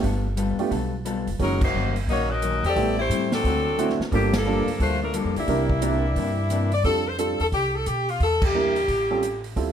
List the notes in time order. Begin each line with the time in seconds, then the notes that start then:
0.02 G1 G3 B3 F4 A4, kick, open hi-hat
0.37 G3 B3 F4 A4, closed hi-hat
0.59 A3 B3 D4 F4 G4, open hi-hat
0.70 B1 G3 B3 F4 A4, kick, open hi-hat
1.05 G3 B3 F4 A4, closed hi-hat
1.27 F1, open hi-hat
1.39 F#1 F#2 D#3 F#3 G#3 A#3 C#4 D#4 F#4 A#4, kick, open hi-hat
1.61 A#3 D#4 F#4 C5, kick, crash
1.74 G1 F#2 D#3 A#3 C#4
1.96 open hi-hat
2.08 A#1 F#2 D#3 A#3 C#4 D#4 F#4 C#5, kick, open hi-hat
2.31 C#4 F#4 A#4 D#5
2.42 F#2 D#3 A#3 C#4, closed hi-hat
2.63 E2 C4 G4 A4 D5, open hi-hat
2.76 A1 A2 G3 A3 B3 C4 E4 G4, kick, open hi-hat
2.99 A3 E4 G4 C5
3.09 A2 G3 C4 E4, closed hi-hat
3.32 F#3 C4 D4 A4, snare, open hi-hat
3.44 D2 D3 A3 C4 F#4, kick, open hi-hat
3.77 D3 A3 C4 D4 E4 F#4, closed hi-hat
3.90 snare
3.99 muted upright bass stroke, snare
4.11 G1 F3 G3 A#3 D4 F4 G4 A4, kick, open hi-hat
4.33 F3 A#3 D4 A4, snare, ride
4.45 G3 A#3 D4 F4 A4
4.67 muted upright bass stroke, open hi-hat
4.79 D2 G3 A3 A#3 D4 F4 A4 C5, kick, open hi-hat
5.03 F3 A3 D4 A#4
5.14 F3 G3 A#3 D4 F4 A4, closed hi-hat
5.24 F2
5.36 C#2 G3 A#3 D4 E4, open hi-hat
5.48 C2 C3 E3 G3 A#3 C4 D4 E4 A#4, kick, open hi-hat
5.69 kick
5.82 C3 E3 G3 A#3 C4 D4 E4 A#4, closed hi-hat
6.16 G2 C3 E3 A#3 D4, kick, open hi-hat
6.50 C3 E3 A#3 D4, closed hi-hat
6.72 D5, open hi-hat
6.84 F2 G3 C4 D4 F4 A4, kick, open hi-hat
7.08 C5
7.18 G3 C4 D4 F4 A4, closed hi-hat
7.40 E2 A4, open hi-hat
7.52 C2 G4, kick, open hi-hat
7.76 A4
7.86 B2 G4, closed hi-hat
8.09 F4, open hi-hat
8.20 E2 A4, kick, open hi-hat
8.42 G4, kick, crash
8.55 G3 A#3 D4 E4 A#4
8.76 open hi-hat
8.88 A1, kick, open hi-hat
9.11 G3 C4 C#4 F4 A4
9.23 closed hi-hat
9.44 open hi-hat
9.56 D2 G3 C4 E4 F4 A4, kick, open hi-hat